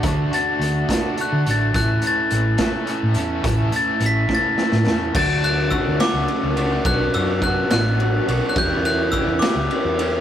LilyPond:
<<
  \new Staff \with { instrumentName = "Glockenspiel" } { \time 6/8 \key d \major \tempo 4. = 70 r8 a'''4. fis'''8 a'''8 | fis'''8 a'''4 r4. | r8 a'''8 b'''8 a'''4. | a'''8 fis'''8 e'''8 d'''4. |
fis'''8 e'''8 fis'''8 fis'''4~ fis'''32 r16 fis'''32 | g'''8 fis'''8 e'''8 d'''4. | }
  \new Staff \with { instrumentName = "Overdriven electric guitar" } { \time 6/8 \key d \major <d d' fis' a'>8 <d' fis' a'>4 <d d' fis' a'>8 <d d' fis' a'>8 <d' fis' a'>8 | <a, a cis' e' a'>8 <cis' e' a'>4 <a, a cis' e' a'>8 <a cis' e' a'>8 <cis' e' a'>8 | <a, a cis' e' a'>8 <cis' e' a'>4 <a, a cis' e' a'>8 <a cis' e' a'>8 <cis' e' a'>8 | <d fis a d' fis'>4 <d fis a d' fis'>8 <d fis a d' fis'>4 <d fis a d' fis'>8 |
<b, fis b d' fis'>4 <b, fis b d' fis'>8 <b, fis b d' fis'>4 <b, fis b d' fis'>8 | <e, b, e g e' g'>4 <e, b, e g e' g'>8 <e, b, e g e' g'>4 <e, b, e g e' g'>8 | }
  \new Staff \with { instrumentName = "Overdriven electric guitar" } { \time 6/8 \key d \major <d a d' fis'>8 <a d' fis'>4 <d a d' fis'>8 <d a d' fis'>8 <a d' fis'>8 | <a, e a cis' e'>8 <a cis' e'>4 <a, e a cis' e'>8 <e a cis' e'>8 <a cis' e'>8 | <a, e a cis' e'>8 <a cis' e'>4 <a, e a cis' e'>8 <e a cis' e'>8 <a cis' e'>8 | <d fis a d' fis'>4 <d fis a d' fis'>8 <d fis a d' fis'>4 <d fis a d' fis'>8 |
<b, fis b d' fis'>4 <b, fis b d' fis'>8 <b, fis b d' fis'>4 <b, fis b d' fis'>8 | <e, b, e g e' g'>4 <e, b, e g e' g'>8 <e, b, e g e' g'>4 <e, b, e g e' g'>8 | }
  \new Staff \with { instrumentName = "Picked electric bass" } { \clef bass \time 6/8 \key d \major d,8 r8 d,8 r8. d16 a,,8 | a,,8 r8 a,,8 r8. a,16 e,8 | a,,8 r8 a,,8 r8. a,16 e,8 | d,4~ d,16 d,16 r16 cis,16 r16 cis,8. |
b,,8 fis,4 a,,4 b,,16 r16 | e,4~ e,16 e,16 r16 cis,16 r16 e,8. | }
  \new DrumStaff \with { instrumentName = "Drums" } \drummode { \time 6/8 <hh bd>8 hh8 hh8 <hh bd sn>8 hh8 hh8 | <hh bd>8 hh8 hh8 <hh bd sn>8 hh8 hh8 | <hh bd>8 hh8 hh8 <bd sn>8 sn16 sn16 sn8 | <cymc bd>8 cymr8 <bd cymr>8 <cymr sn>8 cymr8 cymr8 |
<bd cymr>8 cymr8 <bd cymr>8 <cymr sn>8 cymr8 cymr8 | <bd cymr>8 cymr8 <bd cymr>8 <cymr sn>8 cymr8 cymr8 | }
>>